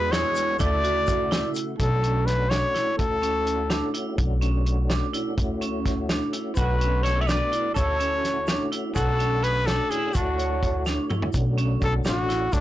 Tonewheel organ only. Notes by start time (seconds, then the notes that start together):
Already playing: G#3 B3 D4 F#4
0.57 C#3 A3 E4 F#4
1.77 A3 C#4 D4 F#4
2.96 A3 C#4 E4 F#4
4.16 A3 C#4 D4 F#4
5.35 A3 C#4 E4 F#4
6.55 A3 B3 D4 F#4
7.74 A3 C#4 E4 F#4
8.93 A3 C#4 D4 F#4
10.12 A3 E4 F#4 C#5
11.33 A3 C#4 D4 F#4
12.51 A3 E4 F#4 C#5